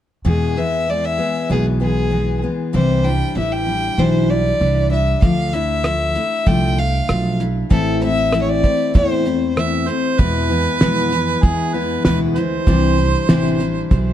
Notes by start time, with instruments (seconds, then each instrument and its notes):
0.25 steel-string acoustic guitar E2 B2 E3 G#3 B3 G#4, upright bass E2, fiddle G#4
0.56 steel-string acoustic guitar E3 G#3 B3 G#4, fiddle E5
0.87 steel-string acoustic guitar E3 G#3 B3 G#4, fiddle D5
1.05 fiddle E5
1.18 steel-string acoustic guitar E3 G#3 B3 G#4
1.50 upright bass B1, steel-string acoustic guitar E2 B2 E3 G#3 B3 G#4, fiddle G#4
1.80 steel-string acoustic guitar E3 G#3 B3 G#4, fiddle G#4
2.11 steel-string acoustic guitar E3 G#3 B3 G#4
2.42 steel-string acoustic guitar E3 G#3 B3 G#4
2.73 upright bass C2, steel-string acoustic guitar C3 E3 G3 D4 E4, fiddle C5
3.04 steel-string acoustic guitar G3 D4 E4, fiddle G5
3.35 upright bass A1, steel-string acoustic guitar E3 G3 D4 E4, fiddle E5
3.52 fiddle G5
3.67 steel-string acoustic guitar G3 D4 E4
3.98 upright bass B1, steel-string acoustic guitar E3 G3 D4 E4, fiddle C5
4.29 steel-string acoustic guitar G3 D4 E4, fiddle D5
4.59 upright bass C2, steel-string acoustic guitar E3 G3 D4 E4
4.91 steel-string acoustic guitar G3 D4 E4, fiddle E5
5.22 upright bass D2, steel-string acoustic guitar D3 F3 A3 D4, fiddle F5, kick, closed hi-hat
5.53 steel-string acoustic guitar A3 D4 E4, fiddle E5, closed hi-hat
5.84 steel-string acoustic guitar F3 A3 D4 E4, cross-stick, closed hi-hat
6.15 steel-string acoustic guitar A3 D4 E4, closed hi-hat
6.46 upright bass C2, steel-string acoustic guitar D3 F3 A3 D4 E4, fiddle G5, kick, closed hi-hat
6.78 steel-string acoustic guitar A3 D4, fiddle F5, closed hi-hat
7.08 upright bass B1, steel-string acoustic guitar F3 A3 D4, cross-stick, closed hi-hat
7.40 steel-string acoustic guitar A3 D4 E4, closed hi-hat
7.70 upright bass A1, steel-string acoustic guitar A2 E3 A3 C4 E4, fiddle A4, kick, closed hi-hat
8.01 steel-string acoustic guitar A3 C4 E4, fiddle E5, closed hi-hat
8.32 steel-string acoustic guitar E3 A3 C4 E4, cross-stick, closed hi-hat
8.42 fiddle C#5
8.49 fiddle D5
8.63 steel-string acoustic guitar A3 C4 E4, kick, closed hi-hat
8.94 upright bass E2, steel-string acoustic guitar A2 E3 A3 C4 E4, fiddle C5, kick, closed hi-hat
9.25 steel-string acoustic guitar A3 C4 E4, closed hi-hat
9.56 steel-string acoustic guitar E3 A3 C4 E4, harmonica E5, cross-stick, closed hi-hat
9.87 steel-string acoustic guitar A3 C4 E4, harmonica C5, closed hi-hat
10.18 steel-string acoustic guitar E2 B2 E3 G#3 B3 E4, upright bass E2, harmonica B4, kick, closed hi-hat
10.49 steel-string acoustic guitar E3 G#3 B3 E4
10.81 upright bass F2, steel-string acoustic guitar B2 E3 G#3 B3 E4, snare, closed hi-hat
11.12 steel-string acoustic guitar E3 G#3 B3 E4, closed hi-hat
11.43 upright bass E2, steel-string acoustic guitar E3 G#3 B3 E4, harmonica G#4, kick, closed hi-hat
11.74 steel-string acoustic guitar E3 G#3 B3 E4, harmonica B4
12.05 upright bass D2, steel-string acoustic guitar E2 B2 E3 G#3 B3 E4, harmonica B4, snare, closed hi-hat
12.35 steel-string acoustic guitar E3 G#3 E4, harmonica C5, closed hi-hat
12.67 upright bass C2, steel-string acoustic guitar C3 E3 G3 D4 E4, kick, closed hi-hat
12.98 steel-string acoustic guitar G3 D4 E4
13.29 upright bass A1, steel-string acoustic guitar C3 E3 G3 D4 E4, snare, closed hi-hat
13.60 steel-string acoustic guitar G3 D4 E4, closed hi-hat
13.91 upright bass B1, steel-string acoustic guitar E3 G3 D4 E4, kick, closed hi-hat